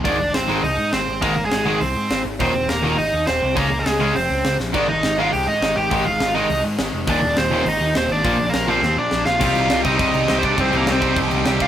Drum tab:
CC |--------|--------|--------|--------|
HH |o-o-o-o-|o-o-o-o-|o-o-o-o-|o-o-o-o-|
SD |--o---o-|--o---o-|--o---o-|--o---oo|
BD |o-------|o-------|o-------|o-------|

CC |x-------|--------|--------|--------|
HH |--o-o-o-|o-o-o-o-|o-o-o-o-|o-o-----|
SD |--o---o-|--o---o-|--o---o-|--o-o-oo|
BD |o-------|o-------|o-------|o-------|

CC |xxxxxxxx|xxxxxxxx|
HH |--------|--------|
SD |--o---o-|--o---o-|
BD |o--oo--o|o--oo--o|